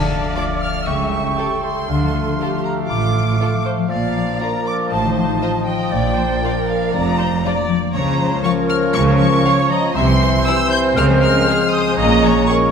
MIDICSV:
0, 0, Header, 1, 11, 480
1, 0, Start_track
1, 0, Tempo, 505051
1, 1793, Time_signature, 4, 2, 24, 8
1, 12083, End_track
2, 0, Start_track
2, 0, Title_t, "Flute"
2, 0, Program_c, 0, 73
2, 0, Note_on_c, 0, 81, 72
2, 340, Note_on_c, 0, 86, 75
2, 354, Note_off_c, 0, 81, 0
2, 586, Note_on_c, 0, 89, 79
2, 600, Note_off_c, 0, 86, 0
2, 826, Note_on_c, 0, 85, 78
2, 840, Note_off_c, 0, 89, 0
2, 1069, Note_off_c, 0, 85, 0
2, 1081, Note_on_c, 0, 85, 78
2, 1563, Note_on_c, 0, 84, 73
2, 1578, Note_off_c, 0, 85, 0
2, 2509, Note_off_c, 0, 84, 0
2, 2515, Note_on_c, 0, 82, 74
2, 2756, Note_on_c, 0, 86, 77
2, 2770, Note_off_c, 0, 82, 0
2, 3473, Note_off_c, 0, 86, 0
2, 3717, Note_on_c, 0, 77, 81
2, 4162, Note_off_c, 0, 77, 0
2, 4200, Note_on_c, 0, 82, 89
2, 4443, Note_on_c, 0, 86, 85
2, 4457, Note_off_c, 0, 82, 0
2, 4665, Note_off_c, 0, 86, 0
2, 4671, Note_on_c, 0, 81, 86
2, 4907, Note_off_c, 0, 81, 0
2, 4911, Note_on_c, 0, 81, 85
2, 5378, Note_off_c, 0, 81, 0
2, 5384, Note_on_c, 0, 79, 85
2, 6328, Note_off_c, 0, 79, 0
2, 6352, Note_on_c, 0, 77, 85
2, 6588, Note_off_c, 0, 77, 0
2, 6594, Note_on_c, 0, 82, 87
2, 7297, Note_off_c, 0, 82, 0
2, 7547, Note_on_c, 0, 82, 100
2, 7994, Note_off_c, 0, 82, 0
2, 8019, Note_on_c, 0, 85, 108
2, 8076, Note_off_c, 0, 85, 0
2, 8261, Note_on_c, 0, 89, 100
2, 8505, Note_on_c, 0, 85, 103
2, 8520, Note_off_c, 0, 89, 0
2, 8743, Note_off_c, 0, 85, 0
2, 8749, Note_on_c, 0, 85, 99
2, 9216, Note_off_c, 0, 85, 0
2, 9220, Note_on_c, 0, 82, 88
2, 9467, Note_on_c, 0, 84, 98
2, 9481, Note_off_c, 0, 82, 0
2, 9931, Note_off_c, 0, 84, 0
2, 9937, Note_on_c, 0, 88, 121
2, 10162, Note_off_c, 0, 88, 0
2, 10168, Note_on_c, 0, 91, 112
2, 10225, Note_off_c, 0, 91, 0
2, 10415, Note_on_c, 0, 89, 114
2, 10472, Note_off_c, 0, 89, 0
2, 10659, Note_on_c, 0, 89, 110
2, 11132, Note_off_c, 0, 89, 0
2, 11137, Note_on_c, 0, 87, 89
2, 11194, Note_off_c, 0, 87, 0
2, 11372, Note_on_c, 0, 82, 116
2, 11857, Note_on_c, 0, 85, 103
2, 11872, Note_off_c, 0, 82, 0
2, 12083, Note_off_c, 0, 85, 0
2, 12083, End_track
3, 0, Start_track
3, 0, Title_t, "Violin section"
3, 0, Program_c, 1, 48
3, 0, Note_on_c, 1, 81, 89
3, 306, Note_off_c, 1, 81, 0
3, 338, Note_on_c, 1, 86, 88
3, 414, Note_off_c, 1, 86, 0
3, 583, Note_on_c, 1, 89, 93
3, 822, Note_off_c, 1, 89, 0
3, 822, Note_on_c, 1, 85, 93
3, 1052, Note_off_c, 1, 85, 0
3, 1063, Note_on_c, 1, 85, 72
3, 1539, Note_off_c, 1, 85, 0
3, 1546, Note_on_c, 1, 84, 91
3, 2493, Note_off_c, 1, 84, 0
3, 2509, Note_on_c, 1, 82, 81
3, 2585, Note_off_c, 1, 82, 0
3, 2748, Note_on_c, 1, 86, 99
3, 3455, Note_off_c, 1, 86, 0
3, 3715, Note_on_c, 1, 77, 97
3, 4161, Note_off_c, 1, 77, 0
3, 4191, Note_on_c, 1, 82, 92
3, 4433, Note_off_c, 1, 82, 0
3, 4439, Note_on_c, 1, 86, 96
3, 4515, Note_off_c, 1, 86, 0
3, 4673, Note_on_c, 1, 81, 103
3, 4893, Note_off_c, 1, 81, 0
3, 4904, Note_on_c, 1, 81, 85
3, 5377, Note_off_c, 1, 81, 0
3, 5390, Note_on_c, 1, 79, 88
3, 6332, Note_off_c, 1, 79, 0
3, 6356, Note_on_c, 1, 77, 93
3, 6587, Note_on_c, 1, 82, 107
3, 6598, Note_off_c, 1, 77, 0
3, 7308, Note_off_c, 1, 82, 0
3, 7542, Note_on_c, 1, 82, 108
3, 7991, Note_off_c, 1, 82, 0
3, 8018, Note_on_c, 1, 85, 101
3, 8094, Note_off_c, 1, 85, 0
3, 8256, Note_on_c, 1, 89, 107
3, 8332, Note_off_c, 1, 89, 0
3, 8502, Note_on_c, 1, 85, 117
3, 8578, Note_off_c, 1, 85, 0
3, 8737, Note_on_c, 1, 85, 108
3, 9209, Note_off_c, 1, 85, 0
3, 9218, Note_on_c, 1, 82, 96
3, 9455, Note_off_c, 1, 82, 0
3, 9459, Note_on_c, 1, 84, 123
3, 9928, Note_off_c, 1, 84, 0
3, 9943, Note_on_c, 1, 88, 127
3, 10181, Note_off_c, 1, 88, 0
3, 10183, Note_on_c, 1, 91, 127
3, 10259, Note_off_c, 1, 91, 0
3, 10424, Note_on_c, 1, 89, 118
3, 10500, Note_off_c, 1, 89, 0
3, 10671, Note_on_c, 1, 89, 119
3, 11137, Note_off_c, 1, 89, 0
3, 11148, Note_on_c, 1, 87, 114
3, 11386, Note_off_c, 1, 87, 0
3, 11388, Note_on_c, 1, 82, 124
3, 11859, Note_off_c, 1, 82, 0
3, 11864, Note_on_c, 1, 85, 113
3, 11940, Note_off_c, 1, 85, 0
3, 12083, End_track
4, 0, Start_track
4, 0, Title_t, "Oboe"
4, 0, Program_c, 2, 68
4, 0, Note_on_c, 2, 77, 67
4, 830, Note_on_c, 2, 79, 62
4, 845, Note_off_c, 2, 77, 0
4, 1791, Note_off_c, 2, 79, 0
4, 1796, Note_on_c, 2, 77, 67
4, 3708, Note_on_c, 2, 74, 71
4, 3722, Note_off_c, 2, 77, 0
4, 4671, Note_on_c, 2, 75, 69
4, 4685, Note_off_c, 2, 74, 0
4, 5614, Note_off_c, 2, 75, 0
4, 5620, Note_on_c, 2, 74, 80
4, 7250, Note_off_c, 2, 74, 0
4, 7549, Note_on_c, 2, 73, 88
4, 9424, Note_off_c, 2, 73, 0
4, 9448, Note_on_c, 2, 72, 95
4, 11378, Note_on_c, 2, 73, 89
4, 11392, Note_off_c, 2, 72, 0
4, 12083, Note_off_c, 2, 73, 0
4, 12083, End_track
5, 0, Start_track
5, 0, Title_t, "Viola section"
5, 0, Program_c, 3, 48
5, 0, Note_on_c, 3, 74, 86
5, 785, Note_off_c, 3, 74, 0
5, 815, Note_on_c, 3, 76, 75
5, 1299, Note_on_c, 3, 69, 73
5, 1305, Note_off_c, 3, 76, 0
5, 1767, Note_off_c, 3, 69, 0
5, 1779, Note_on_c, 3, 69, 74
5, 2259, Note_off_c, 3, 69, 0
5, 2270, Note_on_c, 3, 67, 67
5, 2744, Note_off_c, 3, 67, 0
5, 2748, Note_on_c, 3, 65, 69
5, 3221, Note_off_c, 3, 65, 0
5, 3233, Note_on_c, 3, 69, 71
5, 3309, Note_off_c, 3, 69, 0
5, 3465, Note_on_c, 3, 72, 71
5, 3541, Note_off_c, 3, 72, 0
5, 3705, Note_on_c, 3, 74, 70
5, 4180, Note_off_c, 3, 74, 0
5, 4191, Note_on_c, 3, 70, 80
5, 4665, Note_on_c, 3, 72, 77
5, 4674, Note_off_c, 3, 70, 0
5, 5134, Note_off_c, 3, 72, 0
5, 5145, Note_on_c, 3, 72, 80
5, 5221, Note_off_c, 3, 72, 0
5, 5379, Note_on_c, 3, 75, 76
5, 5619, Note_off_c, 3, 75, 0
5, 5620, Note_on_c, 3, 74, 82
5, 5856, Note_on_c, 3, 72, 75
5, 5864, Note_off_c, 3, 74, 0
5, 6099, Note_on_c, 3, 70, 80
5, 6102, Note_off_c, 3, 72, 0
5, 6581, Note_off_c, 3, 70, 0
5, 6586, Note_on_c, 3, 74, 87
5, 6821, Note_on_c, 3, 72, 84
5, 6831, Note_off_c, 3, 74, 0
5, 6897, Note_off_c, 3, 72, 0
5, 7071, Note_on_c, 3, 74, 96
5, 7539, Note_off_c, 3, 74, 0
5, 7545, Note_on_c, 3, 73, 87
5, 7782, Note_off_c, 3, 73, 0
5, 7787, Note_on_c, 3, 72, 85
5, 8020, Note_on_c, 3, 70, 100
5, 8028, Note_off_c, 3, 72, 0
5, 8981, Note_off_c, 3, 70, 0
5, 8981, Note_on_c, 3, 73, 99
5, 9222, Note_off_c, 3, 73, 0
5, 9224, Note_on_c, 3, 75, 96
5, 9460, Note_on_c, 3, 76, 97
5, 9463, Note_off_c, 3, 75, 0
5, 9536, Note_off_c, 3, 76, 0
5, 9703, Note_on_c, 3, 72, 81
5, 9779, Note_off_c, 3, 72, 0
5, 9934, Note_on_c, 3, 72, 95
5, 10406, Note_off_c, 3, 72, 0
5, 10418, Note_on_c, 3, 70, 105
5, 10891, Note_on_c, 3, 68, 91
5, 10899, Note_off_c, 3, 70, 0
5, 11135, Note_on_c, 3, 72, 96
5, 11137, Note_off_c, 3, 68, 0
5, 11375, Note_off_c, 3, 72, 0
5, 11377, Note_on_c, 3, 75, 116
5, 11617, Note_off_c, 3, 75, 0
5, 11621, Note_on_c, 3, 73, 92
5, 11863, Note_on_c, 3, 70, 92
5, 11864, Note_off_c, 3, 73, 0
5, 12083, Note_off_c, 3, 70, 0
5, 12083, End_track
6, 0, Start_track
6, 0, Title_t, "Violin section"
6, 0, Program_c, 4, 48
6, 346, Note_on_c, 4, 69, 54
6, 347, Note_on_c, 4, 65, 58
6, 422, Note_off_c, 4, 69, 0
6, 423, Note_off_c, 4, 65, 0
6, 1313, Note_on_c, 4, 67, 61
6, 1315, Note_on_c, 4, 69, 57
6, 1389, Note_off_c, 4, 67, 0
6, 1391, Note_off_c, 4, 69, 0
6, 2290, Note_on_c, 4, 65, 60
6, 2291, Note_on_c, 4, 69, 57
6, 2366, Note_off_c, 4, 65, 0
6, 2367, Note_off_c, 4, 69, 0
6, 3246, Note_on_c, 4, 65, 61
6, 3249, Note_on_c, 4, 69, 59
6, 3322, Note_off_c, 4, 65, 0
6, 3325, Note_off_c, 4, 69, 0
6, 4198, Note_on_c, 4, 74, 58
6, 4199, Note_on_c, 4, 65, 62
6, 4274, Note_off_c, 4, 74, 0
6, 4275, Note_off_c, 4, 65, 0
6, 5152, Note_on_c, 4, 65, 66
6, 5157, Note_on_c, 4, 75, 61
6, 5228, Note_off_c, 4, 65, 0
6, 5233, Note_off_c, 4, 75, 0
6, 6114, Note_on_c, 4, 74, 66
6, 6117, Note_on_c, 4, 65, 64
6, 6190, Note_off_c, 4, 74, 0
6, 6193, Note_off_c, 4, 65, 0
6, 7088, Note_on_c, 4, 65, 73
6, 7090, Note_on_c, 4, 74, 70
6, 7164, Note_off_c, 4, 65, 0
6, 7166, Note_off_c, 4, 74, 0
6, 8027, Note_on_c, 4, 65, 74
6, 8029, Note_on_c, 4, 77, 70
6, 8103, Note_off_c, 4, 65, 0
6, 8105, Note_off_c, 4, 77, 0
6, 8986, Note_on_c, 4, 77, 76
6, 8988, Note_on_c, 4, 65, 78
6, 9063, Note_off_c, 4, 77, 0
6, 9064, Note_off_c, 4, 65, 0
6, 9947, Note_on_c, 4, 72, 82
6, 9951, Note_on_c, 4, 64, 80
6, 10023, Note_off_c, 4, 72, 0
6, 10027, Note_off_c, 4, 64, 0
6, 10915, Note_on_c, 4, 68, 80
6, 10916, Note_on_c, 4, 72, 79
6, 10991, Note_off_c, 4, 68, 0
6, 10992, Note_off_c, 4, 72, 0
6, 11876, Note_on_c, 4, 73, 73
6, 11878, Note_on_c, 4, 68, 75
6, 11953, Note_off_c, 4, 73, 0
6, 11954, Note_off_c, 4, 68, 0
6, 12083, End_track
7, 0, Start_track
7, 0, Title_t, "Harp"
7, 0, Program_c, 5, 46
7, 0, Note_on_c, 5, 50, 57
7, 0, Note_on_c, 5, 53, 51
7, 99, Note_on_c, 5, 57, 50
7, 218, Note_on_c, 5, 62, 51
7, 348, Note_on_c, 5, 65, 52
7, 462, Note_on_c, 5, 69, 54
7, 586, Note_on_c, 5, 74, 53
7, 706, Note_on_c, 5, 77, 58
7, 824, Note_on_c, 5, 49, 60
7, 845, Note_off_c, 5, 53, 0
7, 845, Note_off_c, 5, 62, 0
7, 847, Note_off_c, 5, 50, 0
7, 847, Note_off_c, 5, 74, 0
7, 847, Note_off_c, 5, 77, 0
7, 849, Note_off_c, 5, 65, 0
7, 946, Note_on_c, 5, 55, 50
7, 1057, Note_off_c, 5, 57, 0
7, 1068, Note_on_c, 5, 57, 54
7, 1190, Note_on_c, 5, 64, 52
7, 1308, Note_on_c, 5, 67, 55
7, 1418, Note_off_c, 5, 69, 0
7, 1430, Note_on_c, 5, 69, 52
7, 1549, Note_on_c, 5, 76, 51
7, 1670, Note_on_c, 5, 79, 59
7, 1795, Note_on_c, 5, 50, 63
7, 1810, Note_off_c, 5, 49, 0
7, 1810, Note_off_c, 5, 67, 0
7, 1811, Note_off_c, 5, 55, 0
7, 1811, Note_off_c, 5, 76, 0
7, 1811, Note_off_c, 5, 79, 0
7, 1812, Note_off_c, 5, 64, 0
7, 1911, Note_on_c, 5, 53, 53
7, 2021, Note_off_c, 5, 57, 0
7, 2033, Note_on_c, 5, 57, 48
7, 2156, Note_on_c, 5, 65, 55
7, 2262, Note_off_c, 5, 57, 0
7, 2274, Note_on_c, 5, 57, 55
7, 2388, Note_off_c, 5, 69, 0
7, 2399, Note_on_c, 5, 69, 53
7, 2519, Note_on_c, 5, 77, 53
7, 2625, Note_off_c, 5, 69, 0
7, 2636, Note_on_c, 5, 69, 63
7, 2743, Note_off_c, 5, 77, 0
7, 2754, Note_on_c, 5, 77, 54
7, 2866, Note_off_c, 5, 69, 0
7, 2878, Note_on_c, 5, 69, 58
7, 2988, Note_off_c, 5, 65, 0
7, 3000, Note_on_c, 5, 65, 58
7, 3103, Note_off_c, 5, 57, 0
7, 3115, Note_on_c, 5, 57, 55
7, 3220, Note_off_c, 5, 65, 0
7, 3232, Note_on_c, 5, 65, 55
7, 3339, Note_off_c, 5, 53, 0
7, 3350, Note_on_c, 5, 53, 50
7, 3460, Note_off_c, 5, 57, 0
7, 3471, Note_on_c, 5, 57, 52
7, 3581, Note_off_c, 5, 53, 0
7, 3592, Note_on_c, 5, 53, 52
7, 3714, Note_on_c, 5, 46, 65
7, 3731, Note_off_c, 5, 57, 0
7, 3733, Note_off_c, 5, 50, 0
7, 3733, Note_off_c, 5, 69, 0
7, 3830, Note_on_c, 5, 58, 52
7, 3938, Note_off_c, 5, 53, 0
7, 3949, Note_on_c, 5, 53, 50
7, 4067, Note_on_c, 5, 62, 54
7, 4175, Note_off_c, 5, 65, 0
7, 4187, Note_on_c, 5, 65, 58
7, 4298, Note_off_c, 5, 62, 0
7, 4309, Note_on_c, 5, 62, 57
7, 4428, Note_on_c, 5, 74, 60
7, 4533, Note_off_c, 5, 77, 0
7, 4545, Note_on_c, 5, 77, 66
7, 4663, Note_on_c, 5, 45, 65
7, 4691, Note_off_c, 5, 74, 0
7, 4692, Note_off_c, 5, 62, 0
7, 4693, Note_off_c, 5, 58, 0
7, 4695, Note_off_c, 5, 46, 0
7, 4785, Note_on_c, 5, 51, 53
7, 4888, Note_off_c, 5, 53, 0
7, 4900, Note_on_c, 5, 53, 55
7, 5021, Note_on_c, 5, 63, 56
7, 5133, Note_off_c, 5, 65, 0
7, 5144, Note_on_c, 5, 65, 59
7, 5249, Note_off_c, 5, 63, 0
7, 5260, Note_on_c, 5, 63, 57
7, 5384, Note_on_c, 5, 75, 64
7, 5483, Note_off_c, 5, 77, 0
7, 5495, Note_on_c, 5, 77, 65
7, 5619, Note_on_c, 5, 46, 67
7, 5643, Note_off_c, 5, 45, 0
7, 5643, Note_off_c, 5, 63, 0
7, 5644, Note_off_c, 5, 51, 0
7, 5645, Note_off_c, 5, 75, 0
7, 5734, Note_on_c, 5, 58, 56
7, 5847, Note_off_c, 5, 53, 0
7, 5858, Note_on_c, 5, 53, 54
7, 5977, Note_on_c, 5, 62, 56
7, 6087, Note_off_c, 5, 65, 0
7, 6098, Note_on_c, 5, 65, 58
7, 6211, Note_off_c, 5, 62, 0
7, 6222, Note_on_c, 5, 62, 61
7, 6339, Note_on_c, 5, 74, 59
7, 6452, Note_off_c, 5, 77, 0
7, 6463, Note_on_c, 5, 77, 72
7, 6574, Note_off_c, 5, 74, 0
7, 6586, Note_on_c, 5, 74, 63
7, 6691, Note_off_c, 5, 77, 0
7, 6702, Note_on_c, 5, 77, 65
7, 6808, Note_off_c, 5, 65, 0
7, 6819, Note_on_c, 5, 65, 65
7, 6929, Note_off_c, 5, 62, 0
7, 6941, Note_on_c, 5, 62, 59
7, 7051, Note_off_c, 5, 53, 0
7, 7063, Note_on_c, 5, 53, 62
7, 7169, Note_off_c, 5, 58, 0
7, 7180, Note_on_c, 5, 58, 58
7, 7293, Note_off_c, 5, 53, 0
7, 7305, Note_on_c, 5, 53, 63
7, 7407, Note_off_c, 5, 58, 0
7, 7418, Note_on_c, 5, 58, 60
7, 7537, Note_on_c, 5, 49, 73
7, 7562, Note_off_c, 5, 62, 0
7, 7564, Note_off_c, 5, 46, 0
7, 7565, Note_off_c, 5, 74, 0
7, 7661, Note_on_c, 5, 61, 60
7, 7766, Note_off_c, 5, 53, 0
7, 7777, Note_on_c, 5, 53, 65
7, 7895, Note_off_c, 5, 65, 0
7, 7906, Note_on_c, 5, 65, 64
7, 8014, Note_off_c, 5, 53, 0
7, 8025, Note_on_c, 5, 53, 65
7, 8134, Note_off_c, 5, 65, 0
7, 8145, Note_on_c, 5, 65, 69
7, 8254, Note_off_c, 5, 77, 0
7, 8266, Note_on_c, 5, 77, 78
7, 8372, Note_off_c, 5, 65, 0
7, 8384, Note_on_c, 5, 65, 76
7, 8492, Note_off_c, 5, 77, 0
7, 8503, Note_on_c, 5, 77, 70
7, 8614, Note_off_c, 5, 65, 0
7, 8625, Note_on_c, 5, 65, 69
7, 8731, Note_off_c, 5, 53, 0
7, 8742, Note_on_c, 5, 53, 73
7, 8860, Note_off_c, 5, 65, 0
7, 8872, Note_on_c, 5, 65, 65
7, 8975, Note_off_c, 5, 53, 0
7, 8986, Note_on_c, 5, 53, 74
7, 9094, Note_off_c, 5, 61, 0
7, 9214, Note_off_c, 5, 53, 0
7, 9225, Note_on_c, 5, 53, 66
7, 9457, Note_on_c, 5, 48, 77
7, 9475, Note_off_c, 5, 49, 0
7, 9475, Note_off_c, 5, 58, 0
7, 9479, Note_off_c, 5, 77, 0
7, 9482, Note_off_c, 5, 53, 0
7, 9485, Note_off_c, 5, 65, 0
7, 9572, Note_on_c, 5, 55, 71
7, 9695, Note_on_c, 5, 60, 72
7, 9818, Note_on_c, 5, 64, 75
7, 9935, Note_on_c, 5, 67, 70
7, 10176, Note_on_c, 5, 76, 78
7, 10292, Note_on_c, 5, 79, 78
7, 10406, Note_on_c, 5, 49, 81
7, 10433, Note_off_c, 5, 55, 0
7, 10434, Note_off_c, 5, 79, 0
7, 10435, Note_off_c, 5, 48, 0
7, 10435, Note_off_c, 5, 67, 0
7, 10436, Note_off_c, 5, 76, 0
7, 10437, Note_off_c, 5, 64, 0
7, 10528, Note_on_c, 5, 53, 72
7, 10646, Note_off_c, 5, 60, 0
7, 10657, Note_on_c, 5, 60, 68
7, 10774, Note_on_c, 5, 68, 73
7, 10889, Note_on_c, 5, 65, 77
7, 11013, Note_on_c, 5, 72, 70
7, 11143, Note_on_c, 5, 80, 68
7, 11254, Note_on_c, 5, 77, 80
7, 11372, Note_on_c, 5, 46, 82
7, 11396, Note_off_c, 5, 49, 0
7, 11398, Note_off_c, 5, 72, 0
7, 11401, Note_off_c, 5, 60, 0
7, 11500, Note_on_c, 5, 58, 68
7, 11610, Note_off_c, 5, 53, 0
7, 11621, Note_on_c, 5, 53, 68
7, 11744, Note_on_c, 5, 61, 70
7, 11851, Note_off_c, 5, 68, 0
7, 11863, Note_on_c, 5, 68, 71
7, 11975, Note_off_c, 5, 65, 0
7, 11986, Note_on_c, 5, 65, 71
7, 12083, Note_off_c, 5, 46, 0
7, 12083, Note_off_c, 5, 53, 0
7, 12083, Note_off_c, 5, 58, 0
7, 12083, Note_off_c, 5, 61, 0
7, 12083, Note_off_c, 5, 65, 0
7, 12083, Note_off_c, 5, 68, 0
7, 12083, Note_off_c, 5, 77, 0
7, 12083, Note_off_c, 5, 80, 0
7, 12083, End_track
8, 0, Start_track
8, 0, Title_t, "French horn section"
8, 0, Program_c, 6, 60
8, 342, Note_on_c, 6, 57, 56
8, 345, Note_on_c, 6, 65, 57
8, 494, Note_off_c, 6, 57, 0
8, 497, Note_off_c, 6, 65, 0
8, 1305, Note_on_c, 6, 67, 62
8, 1307, Note_on_c, 6, 57, 54
8, 1458, Note_off_c, 6, 67, 0
8, 1459, Note_off_c, 6, 57, 0
8, 2261, Note_on_c, 6, 57, 56
8, 2272, Note_on_c, 6, 65, 54
8, 2413, Note_off_c, 6, 57, 0
8, 2424, Note_off_c, 6, 65, 0
8, 3233, Note_on_c, 6, 65, 54
8, 3238, Note_on_c, 6, 57, 54
8, 3385, Note_off_c, 6, 65, 0
8, 3390, Note_off_c, 6, 57, 0
8, 4194, Note_on_c, 6, 62, 59
8, 4200, Note_on_c, 6, 53, 60
8, 4346, Note_off_c, 6, 62, 0
8, 4352, Note_off_c, 6, 53, 0
8, 5150, Note_on_c, 6, 53, 63
8, 5159, Note_on_c, 6, 63, 63
8, 5302, Note_off_c, 6, 53, 0
8, 5311, Note_off_c, 6, 63, 0
8, 6103, Note_on_c, 6, 62, 66
8, 6105, Note_on_c, 6, 53, 62
8, 6255, Note_off_c, 6, 62, 0
8, 6257, Note_off_c, 6, 53, 0
8, 7075, Note_on_c, 6, 62, 69
8, 7077, Note_on_c, 6, 53, 66
8, 7227, Note_off_c, 6, 62, 0
8, 7229, Note_off_c, 6, 53, 0
8, 7553, Note_on_c, 6, 53, 93
8, 7556, Note_on_c, 6, 61, 91
8, 9426, Note_off_c, 6, 53, 0
8, 9427, Note_off_c, 6, 61, 0
8, 9451, Note_on_c, 6, 60, 108
8, 9457, Note_on_c, 6, 52, 88
8, 10410, Note_on_c, 6, 56, 99
8, 10416, Note_off_c, 6, 52, 0
8, 11339, Note_off_c, 6, 60, 0
8, 11376, Note_off_c, 6, 56, 0
8, 11386, Note_on_c, 6, 61, 93
8, 11388, Note_on_c, 6, 56, 91
8, 11834, Note_off_c, 6, 56, 0
8, 11834, Note_off_c, 6, 61, 0
8, 11868, Note_on_c, 6, 56, 90
8, 11871, Note_on_c, 6, 61, 86
8, 12083, Note_off_c, 6, 56, 0
8, 12083, Note_off_c, 6, 61, 0
8, 12083, End_track
9, 0, Start_track
9, 0, Title_t, "Bassoon"
9, 0, Program_c, 7, 70
9, 0, Note_on_c, 7, 57, 66
9, 3667, Note_off_c, 7, 57, 0
9, 3695, Note_on_c, 7, 53, 75
9, 7241, Note_off_c, 7, 53, 0
9, 7535, Note_on_c, 7, 53, 84
9, 9461, Note_on_c, 7, 52, 91
9, 9475, Note_off_c, 7, 53, 0
9, 10422, Note_on_c, 7, 56, 88
9, 10437, Note_off_c, 7, 52, 0
9, 12083, Note_off_c, 7, 56, 0
9, 12083, End_track
10, 0, Start_track
10, 0, Title_t, "Cello section"
10, 0, Program_c, 8, 48
10, 0, Note_on_c, 8, 50, 68
10, 263, Note_off_c, 8, 50, 0
10, 827, Note_on_c, 8, 49, 73
10, 1230, Note_off_c, 8, 49, 0
10, 1791, Note_on_c, 8, 50, 73
10, 2194, Note_off_c, 8, 50, 0
10, 2763, Note_on_c, 8, 45, 77
10, 3158, Note_off_c, 8, 45, 0
10, 3723, Note_on_c, 8, 46, 72
10, 4118, Note_off_c, 8, 46, 0
10, 4671, Note_on_c, 8, 45, 80
10, 5071, Note_off_c, 8, 45, 0
10, 5626, Note_on_c, 8, 46, 76
10, 6026, Note_off_c, 8, 46, 0
10, 6595, Note_on_c, 8, 41, 85
10, 6995, Note_off_c, 8, 41, 0
10, 7547, Note_on_c, 8, 49, 84
10, 7947, Note_off_c, 8, 49, 0
10, 8504, Note_on_c, 8, 49, 99
10, 8903, Note_off_c, 8, 49, 0
10, 9465, Note_on_c, 8, 48, 96
10, 9861, Note_off_c, 8, 48, 0
10, 10418, Note_on_c, 8, 49, 107
10, 10819, Note_off_c, 8, 49, 0
10, 11383, Note_on_c, 8, 46, 101
10, 11785, Note_off_c, 8, 46, 0
10, 12083, End_track
11, 0, Start_track
11, 0, Title_t, "Double bass section"
11, 0, Program_c, 10, 48
11, 0, Note_on_c, 10, 38, 74
11, 266, Note_off_c, 10, 38, 0
11, 828, Note_on_c, 10, 37, 72
11, 1231, Note_off_c, 10, 37, 0
11, 1789, Note_on_c, 10, 38, 68
11, 2193, Note_off_c, 10, 38, 0
11, 2756, Note_on_c, 10, 33, 75
11, 3155, Note_off_c, 10, 33, 0
11, 3721, Note_on_c, 10, 34, 68
11, 4117, Note_off_c, 10, 34, 0
11, 4681, Note_on_c, 10, 33, 84
11, 5076, Note_off_c, 10, 33, 0
11, 5632, Note_on_c, 10, 34, 83
11, 6029, Note_off_c, 10, 34, 0
11, 6596, Note_on_c, 10, 29, 91
11, 6995, Note_off_c, 10, 29, 0
11, 7553, Note_on_c, 10, 37, 83
11, 7950, Note_off_c, 10, 37, 0
11, 8509, Note_on_c, 10, 37, 95
11, 8906, Note_off_c, 10, 37, 0
11, 9463, Note_on_c, 10, 36, 89
11, 9860, Note_off_c, 10, 36, 0
11, 10422, Note_on_c, 10, 37, 99
11, 10821, Note_off_c, 10, 37, 0
11, 11378, Note_on_c, 10, 34, 89
11, 11783, Note_off_c, 10, 34, 0
11, 12083, End_track
0, 0, End_of_file